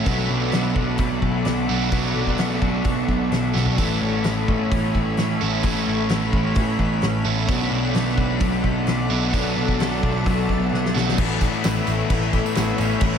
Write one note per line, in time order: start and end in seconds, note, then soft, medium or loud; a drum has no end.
0.00 0.52 B3 medium
0.00 7.46 A4 medium
0.00 1.90 B5 loud
0.06 0.28 B1 medium
0.06 1.68 B2 medium
0.06 1.68 F#3 medium
0.06 0.98 F#3 medium
0.06 1.70 B3 medium
0.06 1.68 D4 medium
0.06 1.68 F#4 medium
0.06 3.75 D5 medium
0.06 3.76 F#5 medium
0.06 kick loud
0.06 open hi-hat soft
0.30 0.51 B1 medium
0.30 0.75 D4 medium
0.52 0.74 B1 medium
0.52 1.21 A3 medium
0.52 snare medium
0.52 open hi-hat soft
0.76 0.97 B1 medium
0.76 1.44 D4 medium
0.76 kick medium
0.98 1.20 B1 medium
0.98 1.91 F#3 medium
0.98 kick loud
0.98 open hi-hat medium
1.22 1.44 B1 medium
1.22 1.69 A3 medium
1.22 kick medium
1.45 1.67 B1 medium
1.45 2.13 D4 medium
1.45 snare medium
1.45 open hi-hat soft
1.69 1.90 B1 medium
1.69 1.92 B2 medium
1.69 1.92 F#3 medium
1.69 2.38 A3 medium
1.69 1.94 B3 medium
1.69 1.91 D4 medium
1.69 1.91 F#4 medium
1.92 2.13 B1 medium
1.92 3.54 B2 medium
1.92 2.83 F#3 medium
1.92 3.54 F#3 medium
1.92 3.54 B3 medium
1.92 3.53 D4 medium
1.92 3.52 F#4 medium
1.92 3.76 C#6 medium
1.92 kick loud
1.92 open hi-hat soft
2.15 2.37 B1 medium
2.15 2.60 D4 medium
2.27 kick medium
2.38 2.60 B1 medium
2.38 3.07 A3 medium
2.38 snare loud
2.38 open hi-hat soft
2.62 2.83 B1 medium
2.62 3.29 D4 medium
2.62 kick medium
2.84 3.07 B1 medium
2.84 3.77 F#3 medium
2.84 kick loud
2.84 open hi-hat soft
3.08 3.30 B1 medium
3.08 3.54 A3 medium
3.08 kick medium
3.31 3.53 B1 medium
3.31 3.78 D4 medium
3.31 snare medium
3.31 open hi-hat soft
3.54 3.77 B1 medium
3.54 3.76 B2 medium
3.54 3.77 F#3 medium
3.54 4.25 A3 medium
3.54 3.77 B3 medium
3.54 3.76 D4 medium
3.54 3.76 F#4 medium
3.54 snare medium
3.66 floor tom medium
3.76 3.99 A1 medium
3.76 5.38 A2 medium
3.76 5.39 E3 medium
3.76 4.70 E3 medium
3.76 5.42 A3 medium
3.76 5.39 C#4 medium
3.76 5.40 A4 medium
3.76 7.45 C#5 medium
3.76 7.46 E5 medium
3.76 9.30 B5 loud
3.76 kick loud
3.76 open hi-hat medium
4.02 4.23 A1 medium
4.02 4.47 C#4 medium
4.24 4.46 A1 medium
4.24 4.94 B3 medium
4.24 snare medium
4.24 open hi-hat soft
4.48 4.70 A1 medium
4.48 5.17 C#4 medium
4.48 kick medium
4.71 4.92 A1 medium
4.71 5.62 E3 medium
4.71 kick loud
4.71 open hi-hat medium
4.94 5.16 A1 medium
4.94 5.40 B3 soft
4.94 kick medium
5.17 5.39 A1 medium
5.17 5.85 C#4 medium
5.17 snare medium
5.17 open hi-hat soft
5.40 5.62 A1 medium
5.40 5.63 A2 medium
5.40 5.64 E3 medium
5.40 5.66 A3 medium
5.40 6.09 B3 medium
5.40 5.63 C#4 medium
5.40 5.66 A4 medium
5.63 5.85 A1 medium
5.63 7.25 A2 medium
5.63 6.54 E3 medium
5.63 7.48 E3 medium
5.63 7.26 A3 medium
5.63 7.24 C#4 medium
5.63 7.24 A4 medium
5.63 kick loud
5.63 open hi-hat medium
5.87 6.08 A1 medium
5.87 6.32 C#4 medium
6.09 6.31 A1 medium
6.09 6.79 B3 medium
6.09 snare loud
6.09 open hi-hat soft
6.33 6.55 A1 medium
6.33 7.00 C#4 medium
6.33 kick medium
6.55 6.77 A1 medium
6.55 7.48 E3 medium
6.55 kick loud
6.55 open hi-hat medium
6.79 7.00 A1 medium
6.79 7.24 B3 medium
6.79 kick medium
7.02 7.24 A1 medium
7.02 7.48 C#4 medium
7.02 snare medium
7.02 open hi-hat soft
7.25 7.46 A1 medium
7.25 7.48 A2 medium
7.25 7.48 E3 medium
7.25 7.49 A3 medium
7.25 7.93 B3 medium
7.25 7.47 C#4 medium
7.25 7.50 A4 medium
7.47 7.70 B1 medium
7.47 9.09 B2 medium
7.47 8.39 F#3 medium
7.47 9.09 F#3 medium
7.47 9.10 B3 medium
7.47 9.09 D4 medium
7.47 9.09 F#4 medium
7.47 11.14 A4 medium
7.47 11.14 D5 medium
7.47 11.13 F#5 medium
7.47 kick loud
7.47 open hi-hat medium
7.70 7.93 B1 medium
7.70 8.15 D4 medium
7.93 8.16 B1 medium
7.93 8.62 A3 medium
7.93 snare loud
7.93 open hi-hat medium
8.16 8.39 B1 medium
8.16 8.86 D4 medium
8.16 kick medium
8.40 8.62 B1 medium
8.40 9.32 F#3 medium
8.40 kick loud
8.40 open hi-hat medium
8.63 8.85 B1 medium
8.63 9.09 A3 medium
8.63 kick medium
8.87 9.09 B1 medium
8.87 9.55 D4 medium
8.87 snare loud
8.87 open hi-hat soft
9.10 9.32 B1 medium
9.10 9.32 B2 medium
9.10 9.32 F#3 medium
9.10 9.79 A3 medium
9.10 9.34 B3 medium
9.10 9.32 D4 medium
9.10 9.32 F#4 medium
9.32 9.55 B1 loud
9.32 10.93 B2 medium
9.32 10.24 F#3 medium
9.32 10.93 F#3 medium
9.32 10.94 B3 medium
9.32 10.94 D4 medium
9.32 10.93 F#4 medium
9.32 11.15 A5 loud
9.32 kick loud
9.32 open hi-hat medium
9.56 9.78 B1 medium
9.56 10.01 D4 medium
9.68 kick medium
9.79 10.00 B1 medium
9.79 10.47 A3 medium
9.79 snare loud
9.79 open hi-hat medium
10.03 10.24 B1 medium
10.03 10.71 D4 medium
10.03 kick medium
10.26 10.47 B1 medium
10.26 11.18 F#3 medium
10.26 kick loud
10.26 open hi-hat medium
10.48 10.70 B1 medium
10.48 10.93 A3 medium
10.48 kick medium
10.72 10.93 B1 medium
10.72 11.18 D4 medium
10.72 snare soft
10.85 snare medium
10.94 11.16 B1 medium
10.94 11.17 B2 medium
10.94 11.17 F#3 medium
10.94 11.18 A3 medium
10.94 11.17 B3 medium
10.94 11.17 D4 medium
10.94 11.16 F#4 medium
10.94 snare medium
11.09 snare medium
11.18 11.47 A1 loud
11.18 12.10 A2 medium
11.18 11.63 E3 medium
11.18 12.12 E3 medium
11.18 12.12 A3 medium
11.18 13.18 A4 medium
11.18 13.18 C#5 medium
11.18 13.01 E5 medium
11.18 13.18 B5 loud
11.18 kick loud
11.18 crash loud
11.18 crash medium
11.41 12.55 B3 medium
11.41 kick medium
11.41 tambourine medium
11.41 crash medium
11.54 tambourine soft
11.64 11.79 A1 medium
11.64 11.85 E3 medium
11.64 snare loud
11.64 tambourine medium
11.64 crash medium
11.87 12.01 A1 medium
11.87 12.09 E3 medium
11.87 tambourine medium
11.87 crash medium
12.00 tambourine soft
12.10 12.39 A1 medium
12.10 13.00 A2 medium
12.10 12.31 E3 medium
12.10 13.01 E3 medium
12.10 13.04 A3 medium
12.10 kick medium
12.10 tambourine soft
12.10 crash loud
12.23 tambourine soft
12.32 12.99 E3 medium
12.32 kick medium
12.32 crash medium
12.46 tambourine medium
12.55 12.71 A1 medium
12.55 13.18 B3 medium
12.55 snare medium
12.55 tambourine medium
12.55 crash medium
12.78 12.93 A1 medium
12.78 13.18 C#4 medium
12.78 tambourine medium
12.78 crash medium
13.01 13.16 A1 loud
13.01 13.18 A2 loud
13.01 13.18 E3 medium
13.01 13.18 E3 loud
13.01 13.18 A3 loud
13.01 13.18 F#5 medium
13.01 kick loud
13.01 crash medium